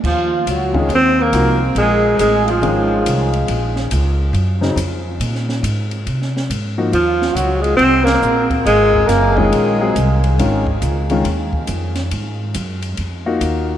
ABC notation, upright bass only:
X:1
M:4/4
L:1/8
Q:"Swing" 1/4=139
K:Ebdor
V:1 name="Upright bass" clef=bass
E,,2 D,,2 E,,2 C,,2 | B,,,2 =A,,,2 _A,,,2 C,,2 | B,,,2 D,,2 G,,2 F,,2 | B,,2 A,,2 C,2 A,,2 |
E,,2 D,,2 C,,2 B,,,2 | A,,,2 G,,,2 B,,,2 C,,2 | A,,,2 D,,2 E,,2 F,,2 | A,,2 G,,2 F,,2 E,,2 |]